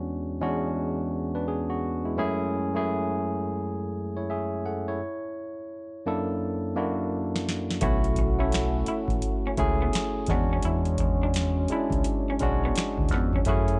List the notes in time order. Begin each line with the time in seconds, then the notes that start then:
Already playing: E2 G#3 C#4 D4 F#4
0.41 E2 G#3 C#4 D4 F#4
1.35 D4 B4
1.48 B3 G#4
1.70 F#4
2.05 G#3 E4
2.17 F#2 A3 C#4 E4 G#4
2.74 F#2 A3 C#4 E4 G#4
4.17 E4 C#5
4.30 G#4 E5
4.66 A4 F#5
4.88 E4 C#5
6.06 F#2 A#3 D4 E4 A4
6.75 F#2 A#3 D4 E4 F#4
7.36 snare
7.49 snare
7.71 snare
7.81 B1 A3 B3 C#4 E4 F#4, kick, closed hi-hat
8.04 closed hi-hat
8.16 muted clean electric guitar stroke, kick, closed hi-hat
8.38 A3 C#4 E4 A4
8.52 finger snap, snare, closed hi-hat
8.86 E4, muted fingered electric bass stroke, closed hi-hat
9.08 A1, kick, closed hi-hat
9.22 closed hi-hat
9.47 C#4
9.57 C#2 A3 C#4 E4 G#4, muted clean electric guitar stroke, kick, closed hi-hat
9.82 B3
9.93 finger snap, muted clean electric guitar stroke, snare, closed hi-hat
10.26 E2 F#3 G#3 C#4 D4, kick, snare, closed hi-hat
10.31 B3 F#4
10.53 C#4
10.63 E2 E4, closed hi-hat
10.85 closed hi-hat
10.98 muted clean electric guitar stroke, kick, closed hi-hat
11.23 D4
11.34 finger snap, snare, closed hi-hat
11.68 G#3 C#4 D4 E4, muted fingered electric bass stroke, closed hi-hat
11.90 C#2, kick, closed hi-hat
12.04 closed hi-hat
12.30 C#4
12.39 B1 G#3 C#4 D4 F#4, muted clean electric guitar stroke, kick, closed hi-hat
12.65 B3
12.76 finger snap, muted clean electric guitar stroke, snare, closed hi-hat
12.98 D2, kick
13.09 F2, kick, snare, closed hi-hat
13.14 B3
13.33 C#4, kick
13.45 F#2 A3 C#4 E4 F#4 G#4 A4, kick, closed hi-hat
13.68 closed hi-hat